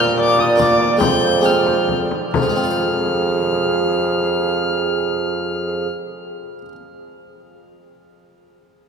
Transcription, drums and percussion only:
0.39 frame drum medium
0.59 frame drum medium
0.80 frame drum medium
1.01 frame drum medium
1.66 frame drum medium
1.89 frame drum medium
2.11 frame drum soft
2.34 frame drum medium

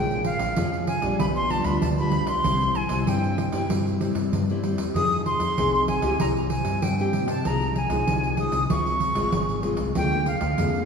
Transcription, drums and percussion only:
0.11 pandeiro soft
0.25 pandeiro medium
0.39 pandeiro medium
0.56 pandeiro medium
0.73 pandeiro soft
0.87 pandeiro medium
1.02 pandeiro medium
1.20 pandeiro medium
1.36 pandeiro soft
1.50 pandeiro medium
1.64 pandeiro medium
1.82 pandeiro medium
1.98 pandeiro soft
2.12 pandeiro medium
2.27 pandeiro medium
2.44 pandeiro medium
2.61 pandeiro soft
2.75 pandeiro medium
2.89 pandeiro medium
3.07 pandeiro medium
3.24 pandeiro soft
3.38 pandeiro medium
3.52 pandeiro medium
3.70 pandeiro medium
3.87 pandeiro soft
4.01 pandeiro medium
4.15 pandeiro medium
4.33 pandeiro medium
4.50 pandeiro soft
4.63 pandeiro medium
4.78 pandeiro medium
4.96 pandeiro medium
5.12 pandeiro soft
5.26 pandeiro medium
5.40 pandeiro medium
5.58 pandeiro medium
5.75 pandeiro soft
5.88 pandeiro medium
6.02 pandeiro medium
6.20 pandeiro medium
6.36 pandeiro soft
6.50 pandeiro medium
6.65 pandeiro medium
6.82 pandeiro medium
6.99 pandeiro soft
7.13 pandeiro medium
7.28 pandeiro medium
7.45 pandeiro medium
7.61 pandeiro soft
7.76 pandeiro medium
7.90 pandeiro medium
8.07 pandeiro medium
8.24 pandeiro soft
8.37 pandeiro medium
8.52 pandeiro medium
8.70 pandeiro medium
8.86 pandeiro soft
9.00 pandeiro medium
9.15 pandeiro medium
9.32 pandeiro medium
9.49 pandeiro soft
9.63 pandeiro medium
9.77 pandeiro medium
9.95 pandeiro medium
10.12 pandeiro soft
10.26 pandeiro medium
10.41 pandeiro medium
10.58 pandeiro medium
10.74 pandeiro soft

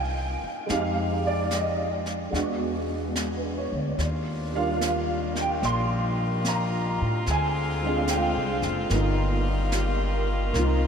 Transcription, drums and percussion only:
0.69 brush sweep soft
0.69 snare soft
1.51 snare soft
1.51 hi-hat pedal soft
2.06 snare soft
2.34 brush sweep soft
2.34 snare soft
3.16 snare soft
3.16 hi-hat pedal soft
3.99 brush sweep soft
3.99 snare soft
4.81 snare soft
4.81 hi-hat pedal soft
5.35 snare soft
5.63 brush sweep soft
5.63 snare soft
6.45 snare soft
6.45 hi-hat pedal soft
7.26 brush sweep soft
7.26 snare soft
8.08 snare soft
8.08 hi-hat pedal medium
8.62 snare soft
8.90 brush sweep soft
8.90 snare soft
9.72 snare soft
9.72 hi-hat pedal soft
10.54 brush sweep soft
10.54 snare soft

